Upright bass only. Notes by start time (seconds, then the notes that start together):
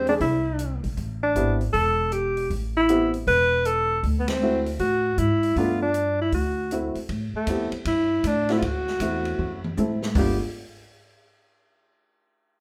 Already playing: E2
0.20 C2
0.84 A#1
0.97 A1
1.35 G#1
1.74 E1
2.50 A1
3.27 E1
4.03 D2
4.80 A2
5.18 G#2
5.56 G2
6.32 D2
6.95 muted upright bass stroke
7.09 A2
7.34 muted upright bass stroke
7.47 F2
7.72 muted upright bass stroke
7.85 G2
8.24 A2
8.62 D2
9.00 E2
9.39 F#2
9.78 A2
10.15 G1